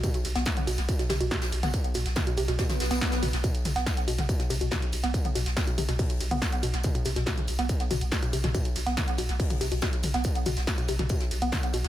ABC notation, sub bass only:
X:1
M:4/4
L:1/16
Q:1/4=141
K:Clyd
V:1 name="Sub bass" clef=bass
z2 B,,, B,,, z2 B,,, B,,, z2 B,,, B,,, z2 B,,, B,,, | z2 B,,, B,,, z2 B,,, B,,, z2 B,,, B,,, z2 B,,, B,,, | z2 B,,, B,,, z2 B,,, B,,, z2 B,,, B,,, z2 B,,, B,,, | z2 B,,, B,,, z2 B,,, B,,, z2 B,,, B,,, z2 B,,, B,,, |
z2 B,,, B,,, z2 B,,, B,,, z2 B,,, B,,, z2 B,,, B,,, | z2 B,,, B,,, z2 B,,, B,,, z2 B,,, B,,, z2 B,,, B,,, | z2 B,,, B,,, z2 B,,, B,,, z2 B,,, B,,, z2 B,,, B,,, |]